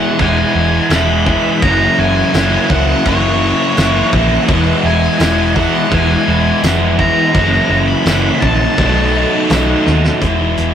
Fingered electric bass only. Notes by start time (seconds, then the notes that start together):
0.19 E1
0.55 E1
0.90 E1
1.62 F#1
1.98 F#1
2.33 F#1
2.70 C#2
3.06 F#1
3.78 F#1
4.13 A#1
4.49 E1
4.83 E1
5.20 E1
5.91 E1
6.28 E1
6.63 F1
7.34 F#1
7.69 F#1
8.06 F#1
8.42 A#1
8.78 B1
9.50 B1
9.87 D#2
10.21 E1
10.58 E1